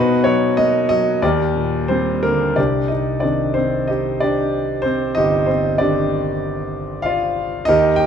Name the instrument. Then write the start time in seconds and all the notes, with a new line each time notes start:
grand piano
Already playing: B2 D#4 F#4 B4
0.24 F#3 C#5
0.57 A#3 D#5
0.89 F#3 D#5
1.22 D#2 G4 A#4 D5
1.55 A#2
1.88 G3 C4 C5
2.23 D3 A#3 A#4
2.56 C2 D4 G4 D5
2.88 D#4 D#5
3.20 D#3 C4 D4 D5
3.54 C4 C5
3.88 D#4 G4 D#5
4.20 D4 G4 D5
4.82 C4 C5
5.15 G1 D#4 G4 D#5
5.46 C4 C5
5.78 D#3 C4 D4 G4 D5
7.02 F4 D5 F5
7.65 D#2 D#4 G4 A#4 D#5
7.96 G4 G5